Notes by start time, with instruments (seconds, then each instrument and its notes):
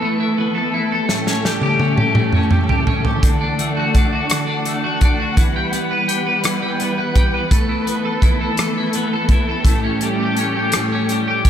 Already playing: string section E3 A3 B3 A4 B4, clean electric guitar E3 B3 E4 A4
0.02 clean electric guitar A3
0.20 clean electric guitar E4
0.38 clean electric guitar B3
0.55 clean electric guitar A4
0.74 clean electric guitar E4
0.92 clean electric guitar A4
1.07 clean electric guitar A2, string section E3 C#4 G4, snare
1.27 clean electric guitar C#4, snare
1.45 clean electric guitar G3, snare
1.62 clean electric guitar G4, high tom
1.80 clean electric guitar C#4, high tom
1.97 clean electric guitar G4, mid tom
2.15 clean electric guitar A2, mid tom
2.32 clean electric guitar C#4, mid tom
2.51 clean electric guitar G3, mid tom
2.69 clean electric guitar G4, floor tom
2.87 clean electric guitar C#4, floor tom
3.05 clean electric guitar G4, floor tom
3.23 clean electric guitar D3, string section D4 F#5, kick, closed hi-hat
3.41 clean electric guitar D4
3.59 clean electric guitar A3, closed hi-hat
3.77 clean electric guitar F#4
3.95 clean electric guitar D4, kick, closed hi-hat
4.13 clean electric guitar F#4
4.30 clean electric guitar D3, cross-stick, closed hi-hat
4.47 clean electric guitar D4
4.65 clean electric guitar A3, closed hi-hat
4.84 clean electric guitar F#4
5.01 clean electric guitar D4, kick, closed hi-hat
5.20 clean electric guitar F#4
5.35 string section E3 G3 B3 B4, clean electric guitar E3, kick, closed hi-hat
5.56 clean electric guitar G4
5.73 clean electric guitar B3, closed hi-hat
5.91 clean electric guitar B4
6.08 clean electric guitar G4, closed hi-hat
6.27 clean electric guitar B4
6.44 clean electric guitar E3, cross-stick, closed hi-hat
6.62 clean electric guitar G4
6.80 clean electric guitar B3, closed hi-hat
6.98 clean electric guitar B4
7.16 clean electric guitar G4, kick, closed hi-hat
7.34 clean electric guitar B4
7.50 string section A3 A4, clean electric guitar A3, kick, closed hi-hat
7.69 clean electric guitar E4
7.87 clean electric guitar B3, closed hi-hat
8.05 clean electric guitar A4
8.22 clean electric guitar E4, kick, closed hi-hat
8.41 clean electric guitar A4
8.57 clean electric guitar A3, cross-stick, closed hi-hat
8.78 clean electric guitar E4
8.93 clean electric guitar B3, closed hi-hat
9.13 clean electric guitar A4
9.29 clean electric guitar E4, kick, closed hi-hat
9.49 clean electric guitar A4
9.64 clean electric guitar A2, string section C#4 G4, kick, closed hi-hat
9.84 clean electric guitar C#4
10.01 clean electric guitar G3, closed hi-hat
10.20 clean electric guitar G4
10.37 clean electric guitar C#4, closed hi-hat
10.56 clean electric guitar G4
10.72 clean electric guitar A2, cross-stick, closed hi-hat
10.92 clean electric guitar C#4
11.09 clean electric guitar G3, closed hi-hat
11.28 clean electric guitar G4
11.45 clean electric guitar C#4, kick, closed hi-hat